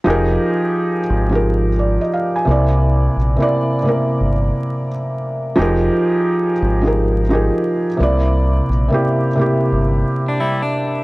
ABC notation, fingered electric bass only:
X:1
M:4/4
L:1/16
Q:"Swing 16ths" 1/4=87
K:Fdor
V:1 name="Fingered electric bass" clef=bass
F,,,2 z4 A,,,4- A,,, z3 C,,2- | C,,2 B,,, z4 z G,,,2 z6 | F,,,2 z4 A,,,4- A,,, z3 C,,2- | C,,2 B,,, z4 z G,,,2 z6 |]